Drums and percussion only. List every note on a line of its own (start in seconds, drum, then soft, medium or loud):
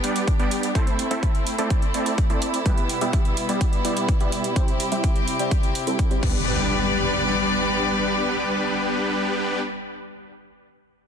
0.04 closed hi-hat medium
0.16 closed hi-hat medium
0.28 kick loud
0.28 closed hi-hat soft
0.40 closed hi-hat soft
0.51 closed hi-hat medium
0.63 closed hi-hat soft
0.75 kick loud
0.75 closed hi-hat medium
0.87 closed hi-hat soft
0.99 closed hi-hat medium
1.11 closed hi-hat soft
1.23 kick loud
1.23 closed hi-hat soft
1.35 closed hi-hat soft
1.47 closed hi-hat medium
1.59 closed hi-hat soft
1.70 kick loud
1.70 closed hi-hat soft
1.82 closed hi-hat soft
1.94 closed hi-hat medium
2.06 closed hi-hat medium
2.18 kick loud
2.18 closed hi-hat soft
2.30 closed hi-hat soft
2.42 closed hi-hat medium
2.54 closed hi-hat soft
2.66 kick loud
2.66 closed hi-hat medium
2.78 closed hi-hat soft
2.89 closed hi-hat medium
3.01 closed hi-hat medium
3.13 kick loud
3.13 closed hi-hat medium
3.25 closed hi-hat soft
3.37 closed hi-hat medium
3.49 closed hi-hat medium
3.61 kick loud
3.61 closed hi-hat medium
3.73 closed hi-hat soft
3.85 closed hi-hat medium
3.97 closed hi-hat medium
4.09 kick loud
4.09 closed hi-hat soft
4.20 closed hi-hat soft
4.32 closed hi-hat medium
4.44 closed hi-hat medium
4.56 kick loud
4.56 closed hi-hat medium
4.68 closed hi-hat soft
4.80 closed hi-hat medium
4.92 closed hi-hat medium
5.04 kick loud
5.04 closed hi-hat medium
5.16 closed hi-hat soft
5.28 closed hi-hat medium
5.39 closed hi-hat medium
5.51 kick loud
5.51 closed hi-hat medium
5.63 closed hi-hat soft
5.75 closed hi-hat medium
5.87 closed hi-hat medium
5.99 kick loud
5.99 closed hi-hat medium
6.11 closed hi-hat soft
6.23 kick loud
6.23 crash medium